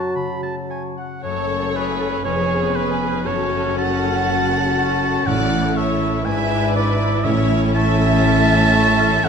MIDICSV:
0, 0, Header, 1, 13, 480
1, 0, Start_track
1, 0, Key_signature, 3, "minor"
1, 0, Tempo, 546448
1, 1097, Time_signature, 4, 2, 24, 8
1, 1097, Tempo, 506329
1, 3497, Tempo, 496689
1, 8818, End_track
2, 0, Start_track
2, 0, Title_t, "Flute"
2, 0, Program_c, 0, 73
2, 0, Note_on_c, 0, 81, 48
2, 828, Note_off_c, 0, 81, 0
2, 8818, End_track
3, 0, Start_track
3, 0, Title_t, "Oboe"
3, 0, Program_c, 1, 68
3, 0, Note_on_c, 1, 81, 48
3, 132, Note_off_c, 1, 81, 0
3, 137, Note_on_c, 1, 83, 55
3, 372, Note_off_c, 1, 83, 0
3, 377, Note_on_c, 1, 81, 49
3, 486, Note_off_c, 1, 81, 0
3, 618, Note_on_c, 1, 80, 49
3, 728, Note_off_c, 1, 80, 0
3, 857, Note_on_c, 1, 78, 49
3, 1079, Note_off_c, 1, 78, 0
3, 1084, Note_on_c, 1, 73, 69
3, 1580, Note_on_c, 1, 71, 67
3, 1594, Note_off_c, 1, 73, 0
3, 2040, Note_off_c, 1, 71, 0
3, 2046, Note_on_c, 1, 73, 74
3, 2522, Note_on_c, 1, 71, 70
3, 2536, Note_off_c, 1, 73, 0
3, 3006, Note_on_c, 1, 73, 74
3, 3020, Note_off_c, 1, 71, 0
3, 3494, Note_off_c, 1, 73, 0
3, 3500, Note_on_c, 1, 81, 85
3, 4934, Note_on_c, 1, 78, 92
3, 4948, Note_off_c, 1, 81, 0
3, 5422, Note_on_c, 1, 76, 74
3, 5437, Note_off_c, 1, 78, 0
3, 5886, Note_on_c, 1, 80, 89
3, 5901, Note_off_c, 1, 76, 0
3, 6364, Note_off_c, 1, 80, 0
3, 6372, Note_on_c, 1, 74, 87
3, 6845, Note_on_c, 1, 76, 90
3, 6859, Note_off_c, 1, 74, 0
3, 7167, Note_off_c, 1, 76, 0
3, 7336, Note_on_c, 1, 81, 112
3, 8776, Note_on_c, 1, 78, 107
3, 8791, Note_off_c, 1, 81, 0
3, 8818, Note_off_c, 1, 78, 0
3, 8818, End_track
4, 0, Start_track
4, 0, Title_t, "Violin section"
4, 0, Program_c, 2, 48
4, 1088, Note_on_c, 2, 69, 60
4, 1539, Note_off_c, 2, 69, 0
4, 1567, Note_on_c, 2, 68, 57
4, 2036, Note_off_c, 2, 68, 0
4, 2052, Note_on_c, 2, 68, 62
4, 2518, Note_off_c, 2, 68, 0
4, 2528, Note_on_c, 2, 68, 62
4, 2994, Note_off_c, 2, 68, 0
4, 3017, Note_on_c, 2, 69, 63
4, 3505, Note_off_c, 2, 69, 0
4, 3506, Note_on_c, 2, 78, 77
4, 4905, Note_off_c, 2, 78, 0
4, 4938, Note_on_c, 2, 74, 79
4, 5399, Note_off_c, 2, 74, 0
4, 5417, Note_on_c, 2, 73, 61
4, 5879, Note_off_c, 2, 73, 0
4, 5892, Note_on_c, 2, 76, 80
4, 6357, Note_off_c, 2, 76, 0
4, 6370, Note_on_c, 2, 71, 79
4, 6838, Note_off_c, 2, 71, 0
4, 6845, Note_on_c, 2, 73, 78
4, 7330, Note_off_c, 2, 73, 0
4, 7347, Note_on_c, 2, 76, 96
4, 8752, Note_off_c, 2, 76, 0
4, 8784, Note_on_c, 2, 73, 90
4, 8818, Note_off_c, 2, 73, 0
4, 8818, End_track
5, 0, Start_track
5, 0, Title_t, "Violin section"
5, 0, Program_c, 3, 48
5, 1103, Note_on_c, 3, 73, 52
5, 2015, Note_off_c, 3, 73, 0
5, 2052, Note_on_c, 3, 71, 55
5, 2966, Note_off_c, 3, 71, 0
5, 3019, Note_on_c, 3, 69, 57
5, 5851, Note_off_c, 3, 69, 0
5, 5886, Note_on_c, 3, 71, 65
5, 6807, Note_off_c, 3, 71, 0
5, 6847, Note_on_c, 3, 69, 71
5, 8818, Note_off_c, 3, 69, 0
5, 8818, End_track
6, 0, Start_track
6, 0, Title_t, "Harp"
6, 0, Program_c, 4, 46
6, 0, Note_on_c, 4, 42, 44
6, 0, Note_on_c, 4, 57, 33
6, 0, Note_on_c, 4, 73, 41
6, 0, Note_on_c, 4, 78, 41
6, 128, Note_on_c, 4, 49, 36
6, 362, Note_off_c, 4, 57, 0
6, 372, Note_on_c, 4, 57, 34
6, 604, Note_off_c, 4, 73, 0
6, 615, Note_on_c, 4, 73, 39
6, 846, Note_off_c, 4, 78, 0
6, 856, Note_on_c, 4, 78, 42
6, 1075, Note_off_c, 4, 42, 0
6, 1085, Note_on_c, 4, 42, 51
6, 1110, Note_off_c, 4, 49, 0
6, 1199, Note_off_c, 4, 57, 0
6, 1211, Note_on_c, 4, 57, 41
6, 1336, Note_on_c, 4, 66, 39
6, 1452, Note_on_c, 4, 69, 47
6, 1575, Note_on_c, 4, 85, 46
6, 1680, Note_off_c, 4, 78, 0
6, 1691, Note_on_c, 4, 78, 44
6, 1798, Note_off_c, 4, 69, 0
6, 1810, Note_on_c, 4, 69, 44
6, 1914, Note_off_c, 4, 73, 0
6, 1926, Note_on_c, 4, 73, 41
6, 2048, Note_on_c, 4, 41, 51
6, 2063, Note_off_c, 4, 42, 0
6, 2066, Note_off_c, 4, 57, 0
6, 2067, Note_off_c, 4, 78, 0
6, 2068, Note_off_c, 4, 66, 0
6, 2068, Note_off_c, 4, 69, 0
6, 2165, Note_on_c, 4, 59, 39
6, 2290, Note_on_c, 4, 68, 41
6, 2410, Note_on_c, 4, 71, 42
6, 2516, Note_off_c, 4, 85, 0
6, 2527, Note_on_c, 4, 85, 47
6, 2645, Note_on_c, 4, 80, 48
6, 2756, Note_off_c, 4, 71, 0
6, 2767, Note_on_c, 4, 71, 46
6, 2871, Note_off_c, 4, 73, 0
6, 2882, Note_on_c, 4, 73, 43
6, 2999, Note_on_c, 4, 42, 52
6, 3020, Note_off_c, 4, 59, 0
6, 3021, Note_off_c, 4, 41, 0
6, 3023, Note_off_c, 4, 68, 0
6, 3023, Note_off_c, 4, 80, 0
6, 3024, Note_off_c, 4, 71, 0
6, 3129, Note_on_c, 4, 57, 42
6, 3251, Note_on_c, 4, 66, 42
6, 3379, Note_on_c, 4, 69, 50
6, 3492, Note_off_c, 4, 85, 0
6, 3504, Note_on_c, 4, 85, 50
6, 3622, Note_on_c, 4, 78, 48
6, 3725, Note_off_c, 4, 69, 0
6, 3736, Note_on_c, 4, 69, 49
6, 3850, Note_off_c, 4, 73, 0
6, 3861, Note_on_c, 4, 73, 48
6, 3981, Note_on_c, 4, 49, 43
6, 4084, Note_off_c, 4, 57, 0
6, 4096, Note_on_c, 4, 57, 43
6, 4212, Note_off_c, 4, 66, 0
6, 4224, Note_on_c, 4, 66, 45
6, 4331, Note_off_c, 4, 69, 0
6, 4343, Note_on_c, 4, 69, 44
6, 4447, Note_off_c, 4, 85, 0
6, 4458, Note_on_c, 4, 85, 52
6, 4562, Note_off_c, 4, 78, 0
6, 4573, Note_on_c, 4, 78, 47
6, 4684, Note_off_c, 4, 69, 0
6, 4695, Note_on_c, 4, 69, 49
6, 4797, Note_off_c, 4, 73, 0
6, 4808, Note_on_c, 4, 73, 47
6, 4927, Note_on_c, 4, 45, 58
6, 4946, Note_off_c, 4, 42, 0
6, 4948, Note_off_c, 4, 78, 0
6, 4949, Note_off_c, 4, 49, 0
6, 4951, Note_off_c, 4, 66, 0
6, 5036, Note_off_c, 4, 57, 0
6, 5047, Note_on_c, 4, 57, 47
6, 5168, Note_on_c, 4, 64, 45
6, 5279, Note_off_c, 4, 69, 0
6, 5291, Note_on_c, 4, 69, 55
6, 5394, Note_off_c, 4, 85, 0
6, 5406, Note_on_c, 4, 85, 52
6, 5525, Note_on_c, 4, 76, 52
6, 5630, Note_off_c, 4, 69, 0
6, 5642, Note_on_c, 4, 69, 51
6, 5753, Note_off_c, 4, 73, 0
6, 5765, Note_on_c, 4, 73, 49
6, 5885, Note_on_c, 4, 44, 61
6, 5900, Note_off_c, 4, 45, 0
6, 5900, Note_off_c, 4, 69, 0
6, 5901, Note_off_c, 4, 57, 0
6, 5901, Note_off_c, 4, 85, 0
6, 5902, Note_off_c, 4, 73, 0
6, 6004, Note_on_c, 4, 59, 48
6, 6112, Note_off_c, 4, 64, 0
6, 6123, Note_on_c, 4, 64, 50
6, 6238, Note_on_c, 4, 71, 52
6, 6360, Note_on_c, 4, 86, 59
6, 6463, Note_off_c, 4, 76, 0
6, 6474, Note_on_c, 4, 76, 54
6, 6584, Note_off_c, 4, 71, 0
6, 6595, Note_on_c, 4, 71, 55
6, 6728, Note_on_c, 4, 74, 55
6, 6837, Note_on_c, 4, 45, 61
6, 6859, Note_off_c, 4, 71, 0
6, 6862, Note_off_c, 4, 86, 0
6, 6864, Note_off_c, 4, 44, 0
6, 6864, Note_off_c, 4, 59, 0
6, 6865, Note_off_c, 4, 74, 0
6, 6965, Note_on_c, 4, 57, 50
6, 7079, Note_off_c, 4, 64, 0
6, 7091, Note_on_c, 4, 64, 55
6, 7213, Note_on_c, 4, 69, 57
6, 7343, Note_on_c, 4, 85, 62
6, 7447, Note_off_c, 4, 76, 0
6, 7458, Note_on_c, 4, 76, 57
6, 7566, Note_off_c, 4, 69, 0
6, 7578, Note_on_c, 4, 69, 63
6, 7697, Note_on_c, 4, 73, 59
6, 7817, Note_on_c, 4, 52, 56
6, 7919, Note_off_c, 4, 57, 0
6, 7931, Note_on_c, 4, 57, 56
6, 8037, Note_off_c, 4, 64, 0
6, 8048, Note_on_c, 4, 64, 59
6, 8166, Note_off_c, 4, 69, 0
6, 8178, Note_on_c, 4, 69, 58
6, 8283, Note_off_c, 4, 85, 0
6, 8295, Note_on_c, 4, 85, 71
6, 8405, Note_off_c, 4, 76, 0
6, 8416, Note_on_c, 4, 76, 64
6, 8524, Note_off_c, 4, 69, 0
6, 8535, Note_on_c, 4, 69, 63
6, 8642, Note_off_c, 4, 73, 0
6, 8654, Note_on_c, 4, 73, 61
6, 8771, Note_on_c, 4, 42, 73
6, 8793, Note_off_c, 4, 45, 0
6, 8797, Note_off_c, 4, 52, 0
6, 8818, Note_off_c, 4, 42, 0
6, 8818, Note_off_c, 4, 57, 0
6, 8818, Note_off_c, 4, 64, 0
6, 8818, Note_off_c, 4, 69, 0
6, 8818, Note_off_c, 4, 73, 0
6, 8818, Note_off_c, 4, 76, 0
6, 8818, Note_off_c, 4, 85, 0
6, 8818, End_track
7, 0, Start_track
7, 0, Title_t, "Clarinet"
7, 0, Program_c, 5, 71
7, 0, Note_on_c, 5, 66, 70
7, 588, Note_off_c, 5, 66, 0
7, 8818, End_track
8, 0, Start_track
8, 0, Title_t, "Viola section"
8, 0, Program_c, 6, 48
8, 1092, Note_on_c, 6, 69, 47
8, 1098, Note_on_c, 6, 57, 47
8, 2010, Note_off_c, 6, 69, 0
8, 2013, Note_off_c, 6, 57, 0
8, 2040, Note_on_c, 6, 68, 54
8, 2044, Note_on_c, 6, 61, 52
8, 2960, Note_off_c, 6, 68, 0
8, 3002, Note_on_c, 6, 66, 54
8, 4890, Note_off_c, 6, 66, 0
8, 4932, Note_on_c, 6, 64, 63
8, 5840, Note_off_c, 6, 61, 0
8, 5882, Note_on_c, 6, 62, 64
8, 6804, Note_off_c, 6, 62, 0
8, 6852, Note_on_c, 6, 61, 68
8, 8740, Note_off_c, 6, 64, 0
8, 8777, Note_on_c, 6, 64, 74
8, 8818, Note_off_c, 6, 61, 0
8, 8818, Note_off_c, 6, 64, 0
8, 8818, End_track
9, 0, Start_track
9, 0, Title_t, "French horn section"
9, 0, Program_c, 7, 60
9, 1104, Note_on_c, 7, 69, 50
9, 1108, Note_on_c, 7, 61, 50
9, 2016, Note_off_c, 7, 69, 0
9, 2018, Note_off_c, 7, 61, 0
9, 2060, Note_on_c, 7, 59, 50
9, 2060, Note_on_c, 7, 68, 51
9, 2989, Note_off_c, 7, 68, 0
9, 2998, Note_on_c, 7, 61, 54
9, 3000, Note_on_c, 7, 66, 55
9, 3008, Note_off_c, 7, 59, 0
9, 4923, Note_on_c, 7, 64, 57
9, 4928, Note_off_c, 7, 66, 0
9, 5841, Note_off_c, 7, 61, 0
9, 5873, Note_on_c, 7, 62, 62
9, 6819, Note_off_c, 7, 62, 0
9, 6821, Note_on_c, 7, 61, 73
9, 8607, Note_off_c, 7, 61, 0
9, 8607, Note_off_c, 7, 64, 0
9, 8771, Note_on_c, 7, 64, 77
9, 8775, Note_on_c, 7, 57, 75
9, 8818, Note_off_c, 7, 57, 0
9, 8818, Note_off_c, 7, 64, 0
9, 8818, End_track
10, 0, Start_track
10, 0, Title_t, "Bassoon"
10, 0, Program_c, 8, 70
10, 0, Note_on_c, 8, 54, 53
10, 831, Note_off_c, 8, 54, 0
10, 8818, End_track
11, 0, Start_track
11, 0, Title_t, "Timpani"
11, 0, Program_c, 10, 47
11, 4935, Note_on_c, 10, 45, 76
11, 5608, Note_off_c, 10, 45, 0
11, 6844, Note_on_c, 10, 45, 76
11, 7541, Note_off_c, 10, 45, 0
11, 8818, End_track
12, 0, Start_track
12, 0, Title_t, "Cello section"
12, 0, Program_c, 11, 48
12, 1096, Note_on_c, 11, 42, 52
12, 2012, Note_off_c, 11, 42, 0
12, 2051, Note_on_c, 11, 41, 56
12, 3003, Note_off_c, 11, 41, 0
12, 3007, Note_on_c, 11, 42, 57
12, 4931, Note_off_c, 11, 42, 0
12, 4931, Note_on_c, 11, 45, 57
12, 5863, Note_off_c, 11, 45, 0
12, 5881, Note_on_c, 11, 44, 62
12, 6843, Note_off_c, 11, 44, 0
12, 6846, Note_on_c, 11, 45, 68
12, 8769, Note_on_c, 11, 42, 74
12, 8778, Note_off_c, 11, 45, 0
12, 8818, Note_off_c, 11, 42, 0
12, 8818, End_track
13, 0, Start_track
13, 0, Title_t, "Double bass section"
13, 0, Program_c, 12, 48
13, 1095, Note_on_c, 12, 30, 53
13, 2012, Note_off_c, 12, 30, 0
13, 2051, Note_on_c, 12, 29, 51
13, 3003, Note_off_c, 12, 29, 0
13, 3009, Note_on_c, 12, 30, 55
13, 4933, Note_off_c, 12, 30, 0
13, 4935, Note_on_c, 12, 33, 57
13, 5866, Note_off_c, 12, 33, 0
13, 5887, Note_on_c, 12, 32, 60
13, 6844, Note_on_c, 12, 33, 72
13, 6846, Note_off_c, 12, 32, 0
13, 8773, Note_on_c, 12, 30, 77
13, 8777, Note_off_c, 12, 33, 0
13, 8818, Note_off_c, 12, 30, 0
13, 8818, End_track
0, 0, End_of_file